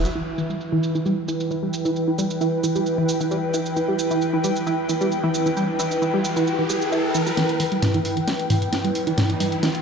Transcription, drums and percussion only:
0.05 closed hi-hat medium
0.05 shaker soft
0.16 shaker soft
0.38 shaker medium
0.50 shaker soft
0.61 shaker soft
0.83 shaker medium
0.95 shaker soft
1.06 shaker soft
1.28 shaker medium
1.40 shaker soft
1.51 shaker soft
1.73 shaker medium
1.85 shaker soft
1.96 shaker soft
2.19 shaker medium
2.30 shaker soft
2.41 shaker soft
2.64 shaker medium
2.75 shaker soft
2.86 shaker soft
3.09 shaker medium
3.21 shaker soft
3.31 shaker soft
3.54 shaker medium
3.66 shaker soft
3.76 shaker soft
3.99 shaker medium
4.11 shaker soft
4.22 shaker soft
4.44 shaker medium
4.56 shaker soft
4.67 shaker soft
4.89 shaker medium
5.01 shaker soft
5.12 shaker soft
5.34 shaker medium
5.46 shaker soft
5.57 shaker soft
5.79 shaker medium
5.91 shaker soft
6.02 shaker soft
6.25 shaker medium
6.36 shaker soft
6.47 shaker soft
6.70 shaker medium
6.82 shaker soft
6.92 shaker soft
7.15 shaker medium
7.27 shaker soft
7.37 snare soft
7.37 closed hi-hat medium
7.49 closed hi-hat medium
7.60 open hi-hat loud
7.72 closed hi-hat medium
7.82 snare medium
7.82 closed hi-hat loud
7.82 mid tom medium
7.94 closed hi-hat medium
8.05 open hi-hat medium
8.17 closed hi-hat medium
8.28 snare medium
8.28 closed hi-hat medium
8.39 closed hi-hat medium
8.50 open hi-hat loud
8.50 mid tom medium
8.62 closed hi-hat medium
8.73 snare medium
8.73 closed hi-hat medium
8.84 closed hi-hat medium
8.95 open hi-hat medium
9.07 closed hi-hat medium
9.18 snare medium
9.18 closed hi-hat medium
9.18 mid tom medium
9.30 closed hi-hat medium
9.40 open hi-hat loud
9.52 closed hi-hat medium
9.63 snare medium
9.63 closed hi-hat loud
9.75 closed hi-hat medium

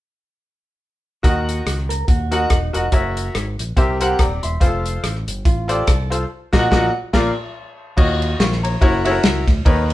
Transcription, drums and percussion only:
1.24 kick loud
1.24 closed hi-hat medium
1.49 closed hi-hat medium
1.67 cross-stick medium
1.67 closed hi-hat medium
1.78 cross-stick soft
1.90 closed hi-hat medium
2.08 kick loud
2.08 closed hi-hat medium
2.32 closed hi-hat medium
2.50 kick medium
2.50 cross-stick loud
2.50 closed hi-hat medium
2.74 closed hi-hat medium
2.92 kick loud
2.92 closed hi-hat medium
3.17 closed hi-hat medium
3.35 cross-stick medium
3.35 closed hi-hat medium
3.59 closed hi-hat medium
3.77 kick loud
3.77 closed hi-hat medium
4.01 closed hi-hat medium
4.19 kick medium
4.19 cross-stick loud
4.19 closed hi-hat medium
4.43 closed hi-hat medium
4.61 kick loud
4.61 closed hi-hat medium
4.86 closed hi-hat medium
5.04 cross-stick medium
5.04 closed hi-hat medium
5.16 cross-stick soft
5.28 closed hi-hat medium
5.45 kick loud
5.45 closed hi-hat medium
5.69 closed hi-hat medium
5.87 kick loud
5.87 cross-stick loud
5.87 closed hi-hat medium
6.12 cross-stick soft
6.12 closed hi-hat medium
6.53 kick loud
6.53 snare loud
6.53 crash medium
6.72 kick medium
6.72 snare loud
7.14 kick medium
7.14 snare loud
7.14 crash medium
7.98 kick loud
7.98 crash medium
8.22 ride medium
8.40 snare medium
8.40 ride medium
8.52 snare soft
8.65 ride medium
8.82 kick loud
8.82 ride medium
9.05 ride medium
9.23 snare loud
9.23 ride medium
9.48 kick medium
9.48 snare soft
9.48 ride medium
9.66 kick loud
9.66 ride medium
9.90 ride medium

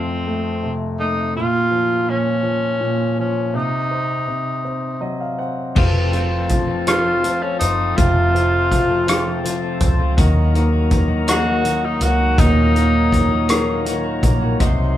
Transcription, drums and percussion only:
5.76 kick loud
5.76 crash medium
6.13 closed hi-hat soft
6.49 kick medium
6.49 closed hi-hat medium
6.87 cross-stick loud
6.87 closed hi-hat medium
7.24 closed hi-hat medium
7.60 closed hi-hat medium
7.98 kick medium
7.98 closed hi-hat medium
8.36 closed hi-hat soft
8.72 kick medium
8.72 cross-stick soft
8.72 closed hi-hat medium
9.08 cross-stick loud
9.08 closed hi-hat medium
9.45 closed hi-hat medium
9.80 kick medium
9.80 closed hi-hat medium
10.18 kick medium
10.18 closed hi-hat medium
10.55 closed hi-hat soft
10.91 kick medium
10.91 closed hi-hat medium
11.28 cross-stick medium
11.28 closed hi-hat medium
11.65 closed hi-hat soft
12.01 closed hi-hat medium
12.38 kick loud
12.38 closed hi-hat medium
12.76 closed hi-hat soft
13.12 kick medium
13.12 cross-stick soft
13.12 closed hi-hat medium
13.49 cross-stick loud
13.49 closed hi-hat medium
13.86 closed hi-hat medium
14.23 kick medium
14.23 closed hi-hat medium
14.60 kick loud
14.60 closed hi-hat medium

